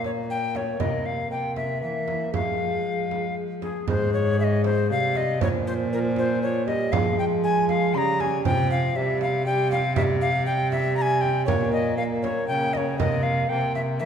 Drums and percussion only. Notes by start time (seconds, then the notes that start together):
0.04 frame drum
0.55 frame drum
0.80 frame drum
1.56 frame drum
2.08 frame drum
2.34 frame drum
3.11 frame drum
3.62 frame drum
3.88 frame drum
4.64 frame drum
5.15 frame drum
5.41 frame drum
6.16 frame drum
6.68 frame drum
6.93 frame drum
7.69 frame drum
8.20 frame drum
8.45 frame drum
9.21 frame drum
9.72 frame drum
9.96 frame drum
10.72 frame drum
11.23 frame drum
11.48 frame drum
12.24 frame drum
12.75 frame drum
13.00 frame drum
13.75 frame drum